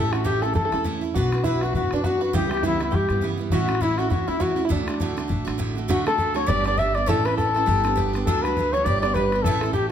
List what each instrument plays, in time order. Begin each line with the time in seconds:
Already playing: upright bass A1, steel-string acoustic guitar A2 E3 A3 C#4 E4, five-string banjo A4, muted trumpet A4
0.12 steel-string acoustic guitar A3 C#4 E4, muted trumpet F#4, five-string banjo F#4, bodhran
0.24 steel-string acoustic guitar A2 E3 A3 C#4 E4, muted trumpet G4, five-string banjo G4, bodhran
0.34 bodhran
0.42 steel-string acoustic guitar A3 C#4 E4, five-string banjo A4, muted trumpet A4, bodhran
0.54 upright bass E2, steel-string acoustic guitar E3 A3 C#4 E4, five-string banjo A4, muted trumpet A4, bodhran
0.65 five-string banjo A4
0.72 upright bass E2, steel-string acoustic guitar A3 C#4 E4, five-string banjo A4, bodhran
0.84 steel-string acoustic guitar A2 E3 A3 C#4 E4, bodhran
1.01 steel-string acoustic guitar A3 C#4 E4
1.14 upright bass B1, steel-string acoustic guitar B3 D4 F#4 B4, five-string banjo F#4, muted trumpet F#4, bodhran
1.32 steel-string acoustic guitar D4 F#4 B4, bodhran
1.38 bodhran
1.44 steel-string acoustic guitar B3 D4 F#4 B4, five-string banjo E4, muted trumpet E4, bodhran
1.53 bodhran
1.61 muted trumpet F#4, five-string banjo F#4, steel-string acoustic guitar F#4 B4, bodhran
1.66 steel-string acoustic guitar D4
1.73 upright bass F#2, steel-string acoustic guitar B3 D4 F#4, five-string banjo F#4, muted trumpet F#4, bodhran
1.78 steel-string acoustic guitar B4
1.91 upright bass F#2, five-string banjo D4, muted trumpet D4, steel-string acoustic guitar F#4 B4, bodhran
1.96 steel-string acoustic guitar D4
2.04 steel-string acoustic guitar B3 D4 F#4 B4, five-string banjo F#4, muted trumpet F#4, bodhran
2.21 steel-string acoustic guitar D4 F#4 B4, five-string banjo F#4, muted trumpet F#4
2.33 upright bass C#2, steel-string acoustic guitar C#3 E3 G3 B3 E4, five-string banjo G4, muted trumpet G4, bodhran
2.49 steel-string acoustic guitar B3 E4, five-string banjo G4, muted trumpet G4, bodhran
2.54 steel-string acoustic guitar G3, bodhran
2.63 steel-string acoustic guitar C#3 E3 G3 B3 E4, five-string banjo E4, muted trumpet E4, bodhran
2.72 bodhran
2.80 steel-string acoustic guitar G3 B3 E4, five-string banjo E4, muted trumpet E4, bodhran
2.91 upright bass G2, steel-string acoustic guitar E3 G3 B3 E4, five-string banjo G4, bodhran
2.95 muted trumpet G4
3.09 upright bass G2, steel-string acoustic guitar G3 B3 E4, bodhran
3.21 steel-string acoustic guitar C#3 E3 G3 B3 E4, bodhran
3.38 steel-string acoustic guitar G3 B3 E4
3.50 upright bass A1, steel-string acoustic guitar A2 E3 A3 C#4 E4, five-string banjo F#4, muted trumpet F#4, bodhran
3.68 steel-string acoustic guitar A3 C#4 E4, bodhran
3.75 bodhran
3.81 steel-string acoustic guitar A2 E3 A3 C#4 E4, muted trumpet E4, five-string banjo E4, bodhran
3.89 bodhran
3.98 steel-string acoustic guitar A3 C#4 E4, muted trumpet F#4, five-string banjo F#4, bodhran
4.10 upright bass E2, steel-string acoustic guitar E3 A3 C#4 E4, five-string banjo F#4, muted trumpet F#4, bodhran
4.28 upright bass E2, steel-string acoustic guitar A3 C#4 E4, five-string banjo E4, muted trumpet E4
4.40 steel-string acoustic guitar A2 E3 A3 C#4 E4, five-string banjo F#4, muted trumpet F#4, bodhran
4.56 steel-string acoustic guitar A3 C#4 E4
4.65 five-string banjo E4, muted trumpet E4
4.69 steel-string acoustic guitar D2 A2 D3 A3 D4 F#4, upright bass D2, muted trumpet D4, five-string banjo D4, bodhran
4.87 steel-string acoustic guitar D3 A3 D4 F#4, bodhran
4.94 bodhran
5.00 steel-string acoustic guitar D2 A2 D3 A3 D4 F#4, bodhran
5.09 bodhran
5.16 steel-string acoustic guitar D3 A3 D4 F#4, bodhran
5.28 upright bass A1, steel-string acoustic guitar D3 A3 D4 F#4, bodhran
5.45 upright bass A1, steel-string acoustic guitar D3 A3 D4 F#4, bodhran
5.58 steel-string acoustic guitar D2 A2 D3 A3 D4 F#4, bodhran
5.75 steel-string acoustic guitar D3 A3 D4 F#4
5.88 steel-string acoustic guitar D2 A2 D3 A3 D4 F#4, upright bass D2, muted trumpet F#4, five-string banjo F#4, bodhran
6.06 steel-string acoustic guitar D3 A3 D4 F#4, muted trumpet A4, five-string banjo A4, bodhran
6.18 steel-string acoustic guitar D3 A3 D4 F#4, bodhran
6.34 steel-string acoustic guitar D3 A3 D4 F#4, five-string banjo C#5, muted trumpet C#5, bodhran
6.46 upright bass G1, steel-string acoustic guitar G3 B3 D4 G4, muted trumpet D5, five-string banjo D5, bodhran
6.64 steel-string acoustic guitar B3 D4 G4, muted trumpet D5, five-string banjo D5, bodhran
6.77 steel-string acoustic guitar G3 B3 D4 G4, muted trumpet E5, five-string banjo E5, bodhran
6.94 steel-string acoustic guitar B3 D4 G4, muted trumpet D5, five-string banjo D5, bodhran
7.06 upright bass A1, steel-string acoustic guitar A2 A3 C#4 E4 A4, muted trumpet A4, five-string banjo A4, bodhran
7.25 steel-string acoustic guitar C#4 E4 A4, muted trumpet B4, five-string banjo B4, bodhran
7.37 steel-string acoustic guitar A3 C#4 E4 A4, five-string banjo A4, muted trumpet A4, bodhran
7.54 steel-string acoustic guitar C#4 E4 A4, bodhran
7.66 upright bass G1, steel-string acoustic guitar G3 B3 D4 G4, bodhran
7.83 steel-string acoustic guitar B3 D4 G4, bodhran
7.96 steel-string acoustic guitar G3 B3 D4 G4, bodhran
8.13 steel-string acoustic guitar B3 D4 G4, bodhran
8.25 upright bass D2, steel-string acoustic guitar D2 A2 F#3 A3 D4 F#4, muted trumpet A4, five-string banjo A4, bodhran
8.42 steel-string acoustic guitar A3 F#4, muted trumpet B4, five-string banjo B4, bodhran
8.46 steel-string acoustic guitar F#3 D4
8.57 steel-string acoustic guitar F#3 A3 D4 F#4, bodhran
8.73 steel-string acoustic guitar A3 D4 F#4, muted trumpet C#5, five-string banjo C#5, bodhran
8.77 steel-string acoustic guitar F#3
8.84 upright bass G1, steel-string acoustic guitar G3 B3 D4 G4, muted trumpet D5, five-string banjo D5, bodhran
9.01 steel-string acoustic guitar B3 D4 G4, muted trumpet D5, five-string banjo D5, bodhran
9.14 steel-string acoustic guitar G3 B3 D4 G4, muted trumpet B4, five-string banjo B4, bodhran
9.32 steel-string acoustic guitar B3 D4 G4, bodhran
9.43 upright bass A1, steel-string acoustic guitar A2 E3, muted trumpet A4, five-string banjo A4, bodhran
9.47 steel-string acoustic guitar A3 C#4 E4
9.61 steel-string acoustic guitar C#4 E4, five-string banjo A4, bodhran
9.66 steel-string acoustic guitar A3
9.73 steel-string acoustic guitar E3 A3 C#4 E4, five-string banjo G4, muted trumpet G4, bodhran